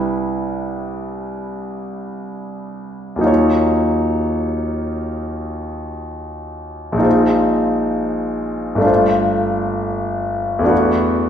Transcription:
0.00 3.18 C2 soft
0.00 3.20 G3 soft
0.00 3.21 D4 soft
0.00 3.22 E4 soft
0.00 3.24 B4 soft
3.16 6.95 D#2 soft
3.16 6.97 F#3 soft
3.21 6.96 D#4 soft
3.21 6.99 F4 soft
3.26 7.01 C#5 soft
6.92 8.78 A#1 soft
6.92 8.79 G#3 soft
6.98 8.81 D#4 soft
6.98 8.82 F4 soft
7.03 8.83 C5 soft
8.75 10.61 G1 soft
8.75 10.60 A3 soft
8.81 10.63 D4 soft
8.81 10.65 F4 soft
8.86 10.67 C5 soft
10.59 11.29 E2 medium
10.59 11.29 A3 soft
10.64 11.29 D4 soft
10.64 11.29 F#4 soft
10.69 11.29 B4 soft

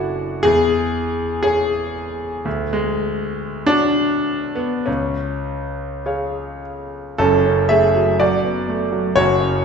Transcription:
0.00 0.47 F#1 medium
0.00 0.46 D4 medium
0.00 0.47 E4 medium
0.00 0.44 F#4 loud
0.00 0.41 A4 medium
0.00 0.41 C#5 medium
0.00 0.41 F#5 medium
0.43 1.40 E2 medium
0.43 1.41 G#4 loud
1.43 1.92 G#4 loud
1.43 2.42 C#5 medium
1.43 2.42 G#5 medium
2.45 3.64 D2 medium
2.73 3.67 G#3 medium
3.66 4.57 D4 loud
3.66 4.83 F#4 medium
3.66 4.83 C#5 soft
3.66 4.84 A5 medium
4.55 4.86 B3 medium
4.86 6.01 C#2 medium
4.86 6.62 C#4 medium
6.06 7.14 G#4 soft
6.06 7.14 C#5 soft
6.06 7.14 F5 medium
7.18 8.16 F#1 medium
7.18 8.16 F#2 medium
7.18 7.44 C#4 medium
7.18 7.69 A4 loud
7.46 7.85 C#4 medium
7.69 8.09 A3 medium
7.69 8.16 G#4 medium
7.69 8.19 E5 loud
7.96 8.20 F#3 medium
8.20 9.14 F#2 medium
8.20 9.13 F#4 medium
8.20 9.17 D5 medium
8.44 8.83 B3 medium
8.69 9.07 A3 medium
8.92 9.16 F#3 medium
9.16 9.65 F#1 medium
9.16 9.65 F#2 medium
9.16 9.65 F#4 medium
9.16 9.65 C#5 loud
9.41 9.65 C#4 medium

